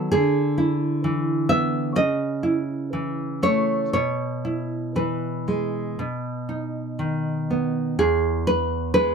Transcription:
Already playing: F#3 B3
0.12 D3 G#4
0.58 E4
1.04 E3
1.49 B3 E5
1.96 C#3 D#5
2.43 E4
2.93 E3
3.43 A3 C#5
3.93 B2 C#5
4.45 E4
4.96 E3 B4
5.48 G#3
5.99 B2
6.49 D#4
6.99 D#3
7.51 B3
7.99 E2 G#4
8.47 B4
8.94 G#3 B4

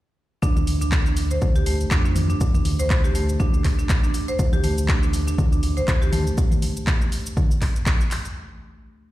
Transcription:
0.42 D2 D4, kick, cabasa
0.56 D4, mid tom, cabasa
0.67 open hi-hat, cabasa
0.81 D4, cabasa
0.92 kick, clap, cabasa
1.06 D4, cabasa
1.17 open hi-hat, cabasa
1.31 C5, cabasa
1.41 kick, mid tom, cabasa
1.56 G4, cabasa
1.66 A3, open hi-hat, cabasa
1.80 cabasa
1.91 F2 D4, kick, clap, cabasa
2.05 D4, cabasa
2.16 open hi-hat, mid tom, cabasa
2.30 D4, cabasa
2.41 D2, kick, cabasa
2.54 D4, mid tom, cabasa
2.65 open hi-hat, cabasa
2.79 C5, cabasa
2.90 kick, clap, cabasa
3.04 G4, cabasa
3.15 A3, open hi-hat, cabasa
3.29 cabasa
3.40 D4, kick, mid tom, cabasa
3.54 D4, cabasa
3.64 kick, clap, open hi-hat, cabasa
3.79 D4, cabasa
3.89 kick, clap, cabasa
4.03 D4, cabasa
4.14 open hi-hat, cabasa
4.28 C5, cabasa
4.39 D2, kick, cabasa
4.53 G4, mid tom, cabasa
4.64 A3, open hi-hat, cabasa
4.78 cabasa
4.88 D4, kick, clap, cabasa
5.03 D4, cabasa
5.13 open hi-hat, cabasa
5.28 D4, cabasa
5.38 D2, kick, mid tom, cabasa
5.52 D4, cabasa
5.63 open hi-hat, cabasa
5.77 C5, cabasa
5.88 D2, kick, clap, cabasa
6.02 G4, cabasa
6.12 A3, open hi-hat, mid tom, cabasa
6.27 cabasa
6.38 kick, cabasa
6.52 mid tom, cabasa
6.62 open hi-hat, cabasa
6.77 cabasa
6.87 kick, clap, cabasa
7.01 cabasa
7.12 open hi-hat, cabasa
7.26 cabasa
7.37 kick, mid tom, cabasa
7.51 cabasa
7.62 kick, clap, open hi-hat, cabasa
7.76 cabasa
7.86 kick, clap, cabasa
8.01 cabasa
8.11 clap, open hi-hat, cabasa
8.25 cabasa

